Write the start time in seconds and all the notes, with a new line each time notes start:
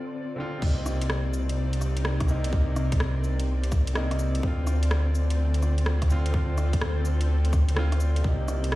Already playing: D3 C4 F4 A4 C5 D5
0.36 D3 C4
0.40 F4
0.58 C3 A#3
0.62 C2 C3 C4 D#4 C5, kick, crash
0.86 cross-stick, cabasa
1.02 closed hi-hat
1.06 D#4, cross-stick
1.34 cabasa
1.49 A#4, closed hi-hat
1.73 closed hi-hat
1.81 cross-stick, cabasa
1.97 closed hi-hat
2.05 cross-stick
2.20 kick, cross-stick, closed hi-hat
2.26 C3 A#3, cabasa
2.31 D#4
2.44 closed hi-hat
2.50 C3 A#3, kick
2.54 D#4
2.76 cross-stick, cabasa
2.92 kick, closed hi-hat
3.00 cross-stick
3.24 cabasa
3.40 closed hi-hat
3.64 closed hi-hat
3.72 kick, cross-stick, cabasa
3.87 closed hi-hat
3.93 C3 A#3 D#4, cross-stick
4.11 cross-stick, closed hi-hat
4.19 cabasa
4.35 closed hi-hat
4.39 D2 D3 C4, kick
4.47 F4
4.67 cross-stick, cabasa
4.83 F4, closed hi-hat
4.91 cross-stick
5.15 cabasa
5.30 closed hi-hat
5.54 closed hi-hat
5.62 cross-stick, cabasa
5.78 closed hi-hat
5.84 A4, cross-stick
6.02 kick, cross-stick, closed hi-hat
6.08 D3 C4, cabasa
6.12 F4
6.26 closed hi-hat
6.32 D3 C4 F4, kick
6.58 cross-stick, cabasa
6.73 kick, closed hi-hat
6.81 cross-stick
7.05 cabasa
7.21 closed hi-hat
7.45 closed hi-hat
7.53 kick, cross-stick, cabasa
7.69 closed hi-hat
7.75 D3 C4 F4, cross-stick
7.92 cross-stick, closed hi-hat
8.00 cabasa
8.16 C3, closed hi-hat
8.24 C2 C3 A#3, kick
8.28 D#4
8.40 D#4
8.48 A#4, cross-stick, cabasa
8.64 closed hi-hat
8.72 cross-stick